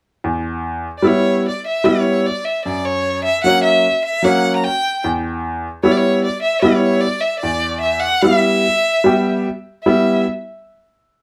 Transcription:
0.24 upright piano E2
0.98 violin D5
1.02 upright piano G3 B3 E4
1.07 violin C#5
1.48 violin D5
1.67 violin E5
1.84 upright piano G3 B3 E4, violin C#5
2.26 violin D5
2.45 violin E5
2.65 upright piano F#2, violin D5
2.85 violin C#5
3.24 violin E5
3.44 upright piano F#3 A#3 C#4, violin F#5
3.63 violin E5
4.05 violin E5
4.22 upright piano F#3 A#3 C#4, violin F#5
4.56 violin A#5
4.64 violin G5
5.04 upright piano E2
5.83 upright piano G3 B3 E4, violin C#5
5.92 violin D5
5.97 violin C#5
6.24 violin D5
6.42 violin E5
6.62 upright piano G3 B3 E4, violin C#5
7.01 violin D5
7.21 violin E5
7.39 upright piano E2, violin D5
7.81 violin E5
7.99 violin F#5
8.21 upright piano G3 B3 E4, violin E5
9.04 upright piano G3 B3 G4
9.83 upright piano G3 B3 E4, violin E5

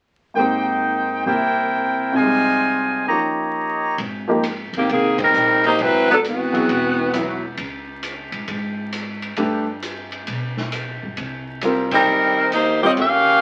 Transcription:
0.34 grand piano G#2 D#3 A#3 C4, trumpet section D#4 C5 G5
0.39 grand piano G4
1.25 grand piano C2 C3 A#3 E4 G4, trumpet section E4 A#4 C5 G5
2.12 grand piano F2 C3
2.16 grand piano G#3 D#4, trumpet section F4 C5 D#5 G#5
2.23 grand piano G3
3.07 grand piano D#2 D#3 F3, trumpet section G4 C#5 D#5 A#5
3.11 grand piano C#4 G4
3.98 upright bass G#1, ride
4.28 grand piano F3 A#3 D#4 G4
4.43 hi-hat pedal, ride
4.73 upright bass G1, saxophone section D#3 A#3 C4 G4, ride
4.89 upright bass C2, saxophone section D#3 A#3 C4 G#4, ride
5.18 saxophone section G3 C4 D#4 A#4, kick, ride
5.34 upright bass A#1, hi-hat pedal
5.64 saxophone section A#3 D#4 G4 C5, ride
5.79 upright bass G#1, saxophone section F#3 C4 E4 B4, ride
6.11 saxophone section F#3 B3 D4 A4
6.24 saxophone section E3 B3 C4 F#4, hi-hat pedal, ride
6.53 upright bass A1, grand piano F#3 B3 E4 G#4, ride
6.68 upright bass E1, ride
7.13 grand piano F#3 B3 E4 B4, hi-hat pedal, ride
7.57 upright bass C#2, ride
8.03 hi-hat pedal, ride
8.32 upright bass G#2, ride
8.48 upright bass G#2, ride
8.92 hi-hat pedal, ride
9.22 ride
9.36 upright bass G2, grand piano A3 D4 G4 B4, ride
9.82 hi-hat pedal, ride
10.12 ride
10.27 upright bass B2, ride
10.57 snare
10.72 hi-hat pedal, ride
11.03 upright bass G2
11.17 upright bass C2, ride
11.61 grand piano G3 C4 F4 A#4, hi-hat pedal, ride
11.91 saxophone section G3 C4 D#4 A#4, kick, ride
12.08 upright bass D#2
12.52 saxophone section A#3 D#4 G4 C5, hi-hat pedal, ride
12.82 grand piano G3 C4 F4 C#5, saxophone section C4 G4 A#4 D#5
12.97 upright bass D#2, saxophone section C#4 G4 A#4 F5, ride

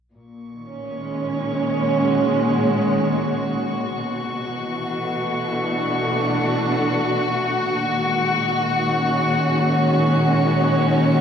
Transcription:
0.14 string section A#2, synth texture C#6
0.54 string section D#3
0.69 string section C#4
0.87 string section G#3
1.87 string section F#4
3.94 string section B2
4.33 string section E3
4.90 string section A3
5.52 string section D4
7.71 string section A#2
7.80 string section D#3
7.86 string section G#3
8.88 string section C#4

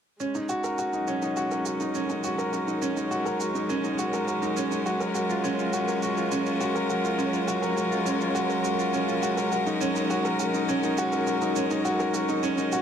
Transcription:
0.20 sub bass D#1, string quartet G#3, grand piano C#4, shaker
0.35 grand piano D#4, shaker
0.49 grand piano F#4, shaker
0.64 string quartet C#4, grand piano A#4, shaker
0.78 grand piano F#4, shaker
0.93 grand piano D#4, shaker
0.98 string quartet F#3
1.08 grand piano C#4, shaker
1.22 grand piano D#4, shaker
1.37 grand piano F#4, shaker
1.51 grand piano A#4, shaker
1.66 grand piano F#4, shaker
1.80 grand piano D#4, string quartet A#4, shaker
1.95 grand piano C#4, shaker
2.10 grand piano D#4, shaker
2.24 grand piano F#4, shaker
2.38 grand piano A#4, shaker
2.53 grand piano F#4, shaker
2.67 grand piano D#4, shaker
2.82 grand piano C#4, shaker
2.97 grand piano D#4, shaker
3.11 grand piano F#4, shaker
3.26 grand piano A#4, shaker
3.40 grand piano F#4, shaker
3.55 grand piano D#4, shaker
3.69 grand piano C#4, shaker
3.84 grand piano D#4, shaker
3.99 grand piano F#4, shaker
4.13 grand piano A#4, shaker
4.28 grand piano F#4, shaker
4.42 grand piano D#4, shaker
4.57 grand piano C#4, shaker
4.71 grand piano D#4, shaker
4.86 sub bass F#1, grand piano F#4, shaker
5.00 grand piano A#4, shaker
5.15 grand piano F#4, shaker
5.29 grand piano F4, shaker
5.44 grand piano C#4, shaker
5.59 grand piano F4, shaker
5.73 grand piano F#4, shaker
5.88 grand piano A#4, shaker
6.02 grand piano F#4, shaker
6.17 grand piano F4, shaker
6.32 grand piano C#4, shaker
6.46 grand piano F4, shaker
6.60 grand piano F#4, shaker
6.75 grand piano A#4, shaker
6.89 grand piano F#4, shaker
7.04 grand piano F4, shaker
7.18 grand piano C#4, shaker
7.33 grand piano F4, shaker
7.48 grand piano F#4, shaker
7.62 grand piano A#4, shaker
7.77 grand piano F#4, shaker
7.91 grand piano F4, shaker
8.06 grand piano C#4, shaker
8.20 grand piano F4, shaker
8.35 grand piano F#4, shaker
8.49 grand piano A#4, shaker
8.64 grand piano F#4, shaker
8.78 grand piano F4, shaker
8.93 grand piano C#4, shaker
9.08 grand piano F4, shaker
9.23 grand piano F#4, shaker
9.37 grand piano A#4, shaker
9.52 grand piano F#4, shaker
9.66 grand piano D#4, shaker
9.81 grand piano C#4, shaker
9.95 grand piano D#4, shaker
10.10 grand piano F#4, shaker
10.25 grand piano A#4, shaker
10.39 grand piano F#4, shaker
10.54 grand piano D#4, shaker
10.69 grand piano C#4, shaker
10.83 grand piano D#4, shaker
10.98 grand piano F#4, shaker
11.12 grand piano A#4, shaker
11.27 grand piano F#4, shaker
11.42 grand piano D#4, shaker
11.56 grand piano C#4, shaker
11.71 grand piano D#4, shaker
11.85 grand piano F#4, shaker
12.00 grand piano A#4, shaker
12.14 grand piano F#4, shaker
12.29 grand piano D#4, shaker
12.43 grand piano C#4, shaker
12.58 grand piano D#4, shaker
12.72 grand piano F#4, shaker

